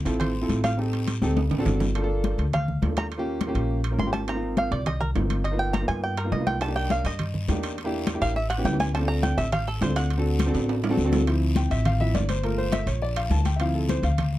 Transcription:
0.05 A1 C4 E4 F4 A4, high timbale, short guiro
0.20 C5, high conga, low conga, high timbale, long guiro
0.35 high conga
0.42 C4 E4 F4 A4
0.49 A1, high conga, high timbale, short guiro
0.64 F5, high conga, high timbale, short guiro
0.77 C4 D#4 G4 A4, high conga, long guiro
0.93 high conga, high timbale
1.08 high conga, high timbale, short guiro
1.22 D2 C4 D#4 G4 A4, high conga, short guiro
1.37 high conga, high timbale, long guiro
1.51 A1, low conga, high timbale
1.58 C4 D4 F#4 A4
1.65 G1, low conga, low timbale, short guiro
1.80 low conga, low timbale, short guiro
1.95 A#3 D4 F4 A4, high conga, high timbale
2.02 A#3 D4 F4 A4
2.10 high conga
2.24 high conga, high timbale, low timbale
2.38 D2, high conga, high timbale
2.53 F5, high conga, low conga, high timbale
2.68 high conga, low conga
2.82 D#2 A#3 D4 F4 A4, high conga, high timbale, low timbale
2.97 A#5, high conga, high timbale
3.12 high conga, high timbale
3.18 A#3 C#4 F4 G4
3.27 high conga
3.41 high conga, high timbale, low timbale
3.47 A#3 C#4 F4 G4
3.55 A#1, high conga, high timbale
3.71 high conga
3.84 high conga, high timbale
3.91 A#3 C#4 F4 A#4
3.98 G#1 C6, high conga, low timbale
4.06 A#3 C#4 F4 G4
4.13 A5, high conga, high timbale
4.27 A#3 C4 D#4 F4 A#5, high conga, high timbale
4.35 A#3 C4 D#4 F4
4.43 high conga
4.57 F5, high conga, high timbale, low timbale
4.71 C2 D5, high conga, high timbale
4.86 D#5, high conga, low conga, high timbale
5.01 A#4, high conga, low conga
5.15 G1 A#3 C4 D#4 F4, high conga, high timbale, low timbale
5.30 high conga, high timbale
5.44 D#5, high timbale
5.51 A#3 B3 D#4 F4
5.59 G5, high conga
5.73 A#5, high conga, high timbale, low timbale
5.80 A#3 B3 D#4 F4
5.88 G2 G#5, high conga, high timbale
6.03 G5, high conga
6.17 A#4, high conga, high timbale
6.24 A#3 B3 D#4 F4
6.32 C2 D#5, high conga, low timbale
6.39 A#3 B3 D#4 F4
6.47 G5, high conga, high timbale
6.60 A#3 D4 D#4 G4 A5, high timbale, long guiro
6.67 A#3 D4 D#4 G4
6.76 G5, high conga
6.90 F5, high conga, high timbale, low timbale, short guiro
7.04 G2 D#5, high conga, high timbale, short guiro
7.19 high conga, low conga, high timbale, long guiro
7.34 high conga, low conga
7.48 E2 A#3 D4 D#4 G4, high conga, high timbale, low timbale, short guiro
7.63 high timbale, short guiro
7.78 high conga, high timbale, long guiro
7.84 A#3 D4 E4 G4
7.93 high conga
8.07 high conga, high timbale, low timbale, short guiro
8.14 A#3 D4 E4 G4
8.21 A1 F5, high conga, high timbale, short guiro
8.36 E5, high conga, long guiro
8.50 F#5, high conga, high timbale
8.57 B3 C#4 E4 G4
8.65 D2 G5, high conga, low timbale, short guiro
8.72 B3 C#4 E4 G4
8.80 G#5, high conga, high timbale, short guiro
8.94 C4 D4 F4 A4 A5, high conga, high timbale, long guiro
9.01 C4 D4 F4 A4
9.08 A#5, high conga
9.23 G5, high conga, high timbale, low timbale, short guiro
9.38 A1 E5, high conga, high timbale, short guiro
9.52 F5, high conga, low conga, high timbale, long guiro
9.67 A4, high conga
9.81 D2 C4 D4 F4 A4 C5, high conga, high timbale, low timbale, short guiro
9.96 F#5, high timbale, short guiro
10.10 high conga, high timbale, long guiro
10.17 C4 D4 F#4 A4
10.25 high conga
10.39 high conga, high timbale, low timbale, short guiro
10.46 C4 D4 F#4 A4
10.54 A1, high conga, high timbale, short guiro
10.68 high conga, high timbale, long guiro
10.83 high conga, low timbale
10.90 C4 D4 F#4 A4
10.97 D2, high conga, short guiro
11.04 C4 D4 F#4 A4
11.12 high conga, low timbale, short guiro
11.27 F3 C4 E4, high timbale, long guiro
11.41 high conga
11.56 G5, high conga, high timbale, low timbale, short guiro
11.71 A1 E5, high conga, high timbale, short guiro
11.85 F5, high conga, low conga, high timbale, long guiro
12.00 F3 C4 E4 E5, high conga, low conga
12.14 G1 D5, high conga, high timbale, low timbale, short guiro
12.29 C5, high conga, high timbale, short guiro
12.43 A3 A#3 F4 A#4, high conga, high timbale, long guiro
12.58 C5, high conga
12.72 E5, high conga, high timbale, low timbale, short guiro
12.87 A#1 C#5, high conga, high timbale, short guiro
13.02 D5, high conga, long guiro
13.16 F5, high conga, high timbale
13.30 D2 A5, high conga, low timbale, short guiro
13.45 G5, high conga, high timbale, short guiro
13.56 F3 E5, high conga, high timbale, long guiro
13.60 C4 E4 F5
13.75 A4, high conga
13.89 C5, high conga, high timbale, low timbale, short guiro
14.03 D2 F5, high conga, high timbale, short guiro
14.18 high conga, low conga, high timbale, long guiro
14.32 high conga

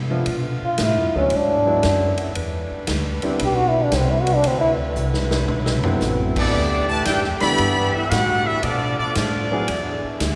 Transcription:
Already playing: C3 D3 E3 B3 E4
0.10 F3 A3 B3 D4 F4
0.26 B2 D3 A3 B3 F4, ride
0.62 F4, muted upright bass stroke
0.78 A2, snare, hi-hat pedal, ride
0.83 E4
0.97 F2
1.15 D2 F#3 G#3 B3 C#4 D4 E4
1.30 G#2 D3 G#3 B3 E4, ride
1.36 D4
1.66 F#3 G#3 B3 D4 E4
1.83 F#2, snare, hi-hat pedal, ride
2.18 ride
2.34 E2 D3 G3 D4 B4, ride
2.71 muted upright bass stroke
2.87 D2, snare, hi-hat pedal, ride
3.22 G3 B3 C4 D4 E4, muted upright bass stroke, ride
3.39 B1, ride
3.44 G4
3.56 F#4
3.69 E4
3.84 D4
3.92 C2, snare, hi-hat pedal, ride
3.97 C4
4.10 E4
4.21 F#4
4.27 ride
4.35 D4
4.42 D2 F#3 E4, ride
4.47 C4
4.61 E4
4.96 C2, hi-hat pedal
5.14 snare
5.31 snare
5.48 B1, mid tom
5.66 snare
5.83 F#3 A3 B3 C4 E4, muted upright bass stroke, floor tom
6.00 A1, snare, hi-hat pedal
6.36 E3 B3 D4 E4 A4 D5, kick, crash
6.53 D2 E3 A3 B3 G4
6.88 D3 E3 A3 E4 B4 D5 A5
7.05 F#2 D4 E4 G4 B4 D5 G5, snare, hi-hat pedal, ride
7.23 E2, snare
7.40 D2 D3 E3 G3 A3 B3 D4 E4 A4 D5 E5 B5, snare, ride
7.58 G2, ride
7.92 E3 B3 D4 E4 A4 B4 E5, muted upright bass stroke
8.08 A2 D4 F#4 G4 B4 F#5, snare, hi-hat pedal, ride
8.44 E3 B3 D4 E4 A4 B4 E5
8.61 B2 D3 F3 A3 B3 D4 F4 A4 D5, ride
8.96 F3 A3 B3 D4 F4 A4 D5, muted upright bass stroke
9.12 F3 A3 D4, hi-hat pedal, ride
9.16 A2 B3 F4 A4 D5, snare
9.51 F#3 B3 D4 E4 G#4
9.68 E2 G#3 E4, ride
10.04 muted upright bass stroke
10.20 D2, snare, hi-hat pedal, ride

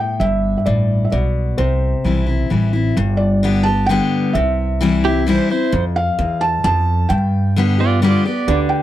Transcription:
Already playing: A2 G5
0.20 G1 G2 E5
0.58 E5
0.66 A1 A2 D5
1.05 E5
1.12 B1 B2 D5
1.58 C2 C3 C5
2.04 B1 E3 G3 C4 E4
2.26 C4 E4
2.50 A1 E3 G3 C4 E4
2.73 C4 E4
2.97 G1 G2
3.17 D5
3.43 D3 G3 B3 G4
3.63 G4 A5
3.68 B3
3.86 D3 G3 B3 G5
3.91 G4
4.33 C2 C3 E5
4.81 E3 G3 C4 E4
5.04 C4 E4 G4
5.26 E3 G3 C4 E4 C5
5.50 C4 E4 C5
5.72 F2
5.96 F5
6.19 E2
6.41 A5
6.64 F2 A5
7.09 G2 G5
7.56 D3 G3 B3 G4
7.78 B3 F4 G4 D5
8.02 D3 G3 B3 F4 G4 D5
8.26 B3 G4 D5
8.48 D2 D3 D4 G4 B4 D5
8.69 G5

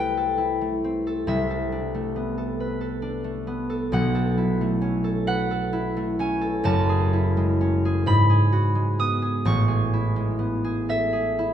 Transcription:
Already playing: C2 C3 A3 C4 E4 A4 B4 G5 A5
0.17 A4
0.38 E4
0.61 A3
0.84 C4
1.07 A4
1.27 C2 C3 E5
1.50 A4
1.72 D4
1.94 A3
2.16 B3
2.38 A4
2.60 B4
2.81 A4
3.02 D4
3.24 A3
3.47 B3
3.70 A4
3.92 B1 B2 F#5
4.15 A4
4.38 E4
4.61 A3
4.81 C#4
5.04 A4
5.27 B4 F#5
5.51 A4
5.73 E4
5.97 A3
6.19 C#4 G#5
6.41 A4
6.64 F#1 F#2 A5
6.89 G#4
7.13 E4
7.37 G#3
7.61 C#4
7.85 G#4
8.06 G#2 B5
8.30 G#4
8.52 F#4
8.75 G#3
8.99 B3 D#6
9.22 G#4
9.45 A1 A2 C#6
9.68 G#4
9.93 E4
10.16 G#3
10.39 B3
10.64 G#4
10.89 A4 E5
11.13 G#4
11.39 E4

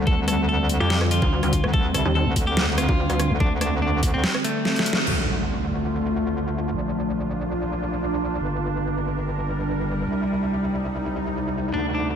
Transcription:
Already playing: D2 D3 G3 C4
0.07 A4, kick
0.28 A4, cross-stick, closed hi-hat
0.49 A4
0.69 closed hi-hat
0.80 F2 G4
0.90 snare
1.01 cross-stick
1.11 F4, closed hi-hat
1.22 D2, kick
1.43 D2, cross-stick, closed hi-hat
1.53 kick, closed hi-hat
1.64 D2, cross-stick
1.74 D2 A4, kick
1.94 C2 A4, cross-stick, closed hi-hat
2.05 D#2
2.15 A4
2.26 D2
2.36 kick, closed hi-hat
2.47 G4
2.57 snare
2.78 F4, cross-stick, closed hi-hat
2.89 D2, kick
3.10 D2, cross-stick, closed hi-hat
3.19 cross-stick, closed hi-hat
3.30 D2
3.40 D4, kick
3.61 D4, cross-stick, closed hi-hat
3.82 D4
4.03 kick, closed hi-hat
4.14 D2 C4
4.24 snare
4.35 cross-stick
4.44 A3, closed hi-hat
4.65 snare
4.76 snare, closed hi-hat
4.86 closed hi-hat
4.93 snare
5.07 D2 D3 A3 F4, crash, impact
6.74 A#1 A#3 D4 F4
8.40 G1 G3 A#4
10.07 C2 C3 D#4
11.74 D2 D3 A3 D4 F4
11.94 D4

